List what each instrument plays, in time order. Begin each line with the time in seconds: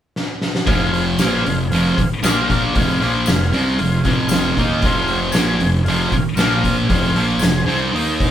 0.16 snare
0.41 snare
0.55 snare
0.66 fingered electric bass F1, distorted electric guitar F2 C3 F3, transistor combo organ G#4 C5 F5, kick, open hi-hat
0.94 open hi-hat
1.18 fingered electric bass A#1, distorted electric guitar A#2 F3 A#3, transistor combo organ G#4 C5 F5, snare, open hi-hat, tambourine
1.46 fingered electric bass F1, distorted electric guitar F2 C3, open hi-hat
1.68 fingered electric bass F1, transistor combo organ G#4 C5 F5, open hi-hat
1.72 distorted electric guitar F2 C3 F3
1.97 muted fingered electric bass stroke, muted distorted electric guitar stroke, kick, open hi-hat
2.23 fingered electric bass A#1, distorted electric guitar A#2 F3 A#3, transistor combo organ F4 A#4 F5, snare, open hi-hat, tambourine
2.50 kick, open hi-hat
2.73 fingered electric bass F1, distorted electric guitar F2 C3 F3, transistor combo organ G#4 C5 F5, kick, open hi-hat
3.00 fingered electric bass A#1, distorted electric guitar A#2 F3 A#3, open hi-hat
3.26 fingered electric bass F1, distorted electric guitar F2 C3, transistor combo organ G#4, snare, open hi-hat, tambourine
3.30 transistor combo organ C5 F5
3.53 fingered electric bass C2, distorted electric guitar C3 G3 C4, transistor combo organ A#5, open hi-hat
3.74 transistor combo organ G#4 C5 F5 C6
3.79 fingered electric bass F1, distorted electric guitar F2 C3, open hi-hat
4.04 fingered electric bass F1, distorted electric guitar F2 C3 F3, transistor combo organ G#5, kick, open hi-hat
4.26 transistor combo organ G#4 C5 D#5 F5, tambourine
4.31 snare, open hi-hat
4.55 fingered electric bass D#2, distorted electric guitar D#3 A#3 D#4, transistor combo organ F5, kick, open hi-hat
4.79 fingered electric bass F1, distorted electric guitar F2, transistor combo organ G#4 C5 F5, kick, open hi-hat
4.85 distorted electric guitar C3 F3
5.08 open hi-hat
5.31 fingered electric bass A#1, distorted electric guitar A#2, transistor combo organ G#4 C5 G#5, snare, open hi-hat, tambourine
5.36 distorted electric guitar F3 A#3
5.59 fingered electric bass F1, distorted electric guitar F2 C3, open hi-hat
5.83 fingered electric bass F1, transistor combo organ G#4 C5 F5, open hi-hat
5.88 distorted electric guitar F2 C3 F3
6.12 muted fingered electric bass stroke, muted distorted electric guitar stroke, kick, open hi-hat
6.35 fingered electric bass A#1, distorted electric guitar A#2 F3, transistor combo organ F4 A#4 F5, snare, open hi-hat, tambourine
6.40 distorted electric guitar A#3
6.64 kick, open hi-hat
6.86 fingered electric bass F1, distorted electric guitar F2 C3, transistor combo organ G#4 C5 F5, kick, open hi-hat
6.91 distorted electric guitar F3
7.12 fingered electric bass A#1, distorted electric guitar A#2
7.16 distorted electric guitar F3 A#3, open hi-hat
7.38 fingered electric bass F1, distorted electric guitar F2, transistor combo organ G#4 C5 G#5, tambourine
7.42 distorted electric guitar C3, snare, open hi-hat
7.65 fingered electric bass C2, distorted electric guitar C3 G3 C4, open hi-hat
7.92 fingered electric bass D#2, distorted electric guitar D#3 A#3 D#4, transistor combo organ D#4 A#4 D#5, open hi-hat
8.20 kick, open hi-hat